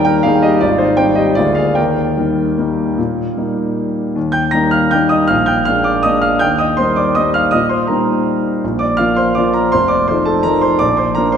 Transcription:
0.00 0.64 D#2 medium
0.00 0.22 G3 soft
0.00 0.23 A#3 soft
0.00 0.23 D#4 medium
0.00 0.06 A#4 medium
0.00 0.61 D5 medium
0.00 0.05 G5 loud
0.00 0.65 A#5 medium
0.05 0.24 A#4 medium
0.05 0.25 G5 medium
0.23 0.59 G3 soft
0.23 0.59 A#3 soft
0.23 0.59 D#4 medium
0.23 0.42 G#4 medium
0.23 0.43 F5 medium
0.42 0.61 G4 medium
0.42 0.61 D#5 medium
0.61 0.97 G#1 medium
0.61 0.78 F4 medium
0.61 0.79 D5 medium
0.78 0.96 D#4 medium
0.78 0.96 C5 medium
0.97 1.33 G3 soft
0.97 1.33 C4 soft
0.97 1.33 D#4 soft
0.97 1.15 C5 medium
0.97 1.16 G5 medium
1.15 1.35 G4 medium
1.15 1.36 D#5 medium
1.35 1.76 D2 medium
1.35 1.73 G#3 soft
1.35 1.73 A#3 soft
1.35 1.55 F4 medium
1.35 1.56 D5 medium
1.55 1.75 G#4 medium
1.55 1.75 F5 medium
1.75 2.16 D#2 medium
1.75 3.73 A#4 medium
1.75 3.76 G5 medium
2.17 2.54 G3 soft
2.17 2.54 A#3 soft
2.17 2.54 D#4 soft
2.58 2.94 G3 soft
2.58 2.94 A#3 soft
2.58 2.94 D#4 soft
2.98 3.36 A#2 medium
3.37 4.12 G3 soft
3.37 4.12 A#3 soft
3.37 4.13 D#4 soft
4.16 4.52 D#2 medium
4.32 4.52 G5 medium
4.32 4.52 G6 medium
4.51 4.88 G3 soft
4.51 4.88 A#3 soft
4.51 4.89 D#4 soft
4.51 4.71 A#5 medium
4.51 4.72 A#6 medium
4.71 4.91 F5 medium
4.71 4.91 F6 medium
4.91 5.27 G3 soft
4.91 5.27 A#3 soft
4.91 5.27 D#4 medium
4.91 5.10 G5 medium
4.91 5.11 G6 medium
5.09 5.28 D#5 medium
5.09 5.29 D#6 medium
5.28 5.66 A#1 medium
5.28 5.46 F5 medium
5.28 5.47 F6 medium
5.46 5.65 G5 medium
5.46 5.66 G6 medium
5.65 6.01 G#3 soft
5.65 6.02 A#3 soft
5.65 6.02 D4 medium
5.65 5.84 F5 medium
5.65 5.85 F6 medium
5.84 6.03 D5 medium
5.84 6.04 D6 medium
6.03 6.38 G#3 soft
6.03 6.38 A#3 soft
6.03 6.38 D4 soft
6.03 6.22 D#5 medium
6.03 6.22 D#6 medium
6.22 6.40 F5 medium
6.22 6.41 F6 medium
6.39 6.78 D#2 medium
6.39 6.58 G5 medium
6.39 6.59 G6 medium
6.58 6.77 D#5 medium
6.58 6.78 D#6 medium
6.77 7.13 G3 soft
6.77 7.13 A#3 soft
6.77 7.14 D#4 soft
6.77 6.96 C5 medium
6.77 6.97 C6 medium
6.96 7.15 D5 medium
6.96 7.16 D6 medium
7.15 7.50 G3 soft
7.15 7.50 A#3 soft
7.15 7.51 D#4 soft
7.15 7.34 D#5 medium
7.15 7.34 D#6 medium
7.34 7.52 F5 medium
7.34 7.53 F6 medium
7.51 7.89 A#2 medium
7.51 7.70 D#5 medium
7.51 7.70 D#6 medium
7.69 7.88 C5 medium
7.69 7.88 C6 medium
7.87 8.59 G3 soft
7.87 8.59 A#3 soft
7.87 8.59 D#4 soft
7.87 8.58 A#4 soft
7.87 8.62 A#5 medium
8.64 8.98 A#1 medium
8.79 8.97 D5 medium
8.79 8.98 D6 medium
8.97 9.33 F3 soft
8.97 9.33 A#3 soft
8.97 9.34 F4 soft
8.97 9.16 F5 medium
8.97 9.17 F6 medium
9.16 9.35 C5 medium
9.16 9.36 C6 medium
9.35 9.70 F3 soft
9.35 9.70 A#3 soft
9.35 9.70 F4 medium
9.35 9.53 D5 medium
9.35 9.54 D6 medium
9.53 9.72 A#4 medium
9.53 9.72 A#5 medium
9.72 10.09 F1 medium
9.72 9.90 C5 medium
9.72 9.90 C6 medium
9.88 10.07 D5 medium
9.88 10.08 D6 medium
10.08 10.43 F3 soft
10.08 10.43 A3 soft
10.08 10.43 D#4 soft
10.08 10.26 C5 medium
10.08 10.27 C6 medium
10.25 10.44 A4 medium
10.25 10.45 A5 medium
10.43 10.78 F3 soft
10.43 10.78 A3 soft
10.43 10.79 D#4 soft
10.43 10.62 A#4 medium
10.43 10.63 A#5 medium
10.61 10.80 C5 medium
10.61 10.81 C6 medium
10.79 11.16 A#1 medium
10.79 10.97 D5 medium
10.79 10.98 D6 medium
10.97 11.16 C5 medium
10.97 11.16 C6 medium
11.15 11.37 F3 soft
11.15 11.37 A#3 soft
11.15 11.37 D4 soft
11.15 11.34 A#4 medium
11.15 11.34 A#5 medium
11.32 11.37 C5 medium
11.32 11.37 C6 medium

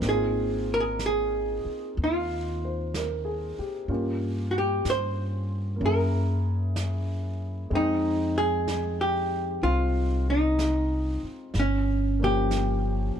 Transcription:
0.00 1.60 G#1 medium
0.00 3.87 A#3 soft
0.00 3.90 C4 soft
0.00 0.23 C5 soft
0.00 brush sweep soft
0.00 snare soft
0.07 3.92 D#4 soft
0.07 3.88 F4 soft
0.07 0.79 G#4 medium
0.74 1.04 A#4 medium
0.80 0.82 G#4 medium
0.99 brush sweep soft
0.99 snare soft
0.99 hi-hat pedal soft
1.06 1.96 G#4 medium
1.65 muted upright bass stroke soft
1.96 3.54 D#2 medium
1.96 brush sweep soft
2.04 3.58 F4 medium
2.65 3.13 C5 soft
2.94 3.55 A#4 soft
2.94 brush sweep soft
2.94 snare soft
2.94 hi-hat pedal soft
3.25 3.75 G#4 soft
3.59 3.90 G4 soft
3.59 muted upright bass stroke soft
3.88 4.81 G2 medium
3.88 5.75 A#3 soft
3.88 5.79 C#4 soft
3.88 5.81 F4 soft
3.88 5.82 G4 soft
3.88 brush sweep soft
4.51 4.57 F#4 soft
4.58 4.88 G4 medium
4.85 5.77 G2 medium
4.85 brush sweep soft
4.85 snare soft
4.85 hi-hat pedal soft
4.90 5.85 C5 medium
5.76 7.70 A#3 soft
5.80 7.68 F#2 medium
5.80 7.72 C#4 soft
5.80 7.73 E4 soft
5.80 brush sweep soft
5.86 7.75 G#4 soft
5.86 7.39 A#4 medium
6.76 brush sweep soft
6.76 snare soft
6.76 hi-hat pedal soft
7.70 9.59 F2 medium
7.70 11.54 G#3 soft
7.70 9.62 C4 soft
7.70 11.56 D#4 soft
7.70 brush sweep soft
7.75 8.40 D#4 medium
7.75 11.57 G5 soft
8.38 9.01 G#4 medium
8.68 brush sweep soft
8.68 snare soft
8.68 hi-hat pedal soft
9.01 9.66 G4 medium
9.63 11.19 C2 medium
9.63 11.55 C4 soft
9.63 10.30 F4 medium
9.63 11.56 F4 soft
9.63 brush sweep soft
10.30 11.21 D#4 medium
10.59 brush sweep soft
10.59 snare soft
10.59 hi-hat pedal soft
11.23 muted upright bass stroke soft
11.54 13.12 G1 medium
11.54 brush sweep soft
11.54 snare soft
11.60 12.23 C#4 medium
12.19 13.20 F3 soft
12.19 13.20 A#3 soft
12.19 13.20 C#4 soft
12.24 13.20 G4 medium
12.24 13.20 G4 soft
12.51 brush sweep soft
12.51 snare soft
12.51 hi-hat pedal soft
13.16 muted upright bass stroke soft

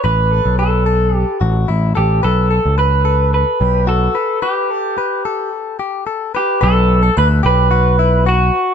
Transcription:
0.04 0.39 A1 medium
0.04 0.31 B4 medium
0.04 0.55 B4 medium
0.31 0.58 A4 medium
0.45 1.24 B1 medium
0.59 1.16 A4 medium
0.59 0.86 B4 medium
0.86 1.38 A4 medium
1.16 1.37 G4 medium
1.41 1.64 A1 medium
1.41 1.68 F#4 medium
1.68 1.92 A1 medium
1.68 1.95 E4 medium
1.95 2.20 A1 medium
1.95 2.22 G4 medium
1.95 2.23 A4 medium
2.23 2.59 B1 medium
2.23 2.78 A4 medium
2.23 2.50 B4 medium
2.51 2.77 A4 medium
2.65 3.43 C#2 medium
2.78 3.04 B4 medium
2.78 3.30 B4 medium
3.05 3.60 A4 medium
3.34 3.88 B4 medium
3.60 4.07 B1 medium
3.60 3.88 G4 medium
3.87 4.15 F#4 medium
3.87 4.42 A4 medium
4.15 4.41 B4 medium
4.42 5.48 G4 medium
4.42 4.70 B4 medium
4.70 4.97 A4 medium
4.98 5.25 B4 medium
5.25 5.77 A4 medium
5.79 6.06 G4 medium
6.07 6.34 A4 medium
6.35 6.63 G4 medium
6.35 6.60 B4 medium
6.61 7.09 B1 loud
6.61 7.14 A4 loud
6.61 7.00 B4 medium
7.03 7.17 A4 medium
7.17 7.40 D2 loud
7.17 7.43 B4 medium
7.17 7.25 B4 loud
7.43 8.50 B1 medium
7.43 7.70 G4 medium
7.43 8.28 B4 loud
7.71 7.98 F#4 medium
7.99 8.26 E4 medium
8.26 8.74 F#4 medium
8.26 8.74 F#4 loud

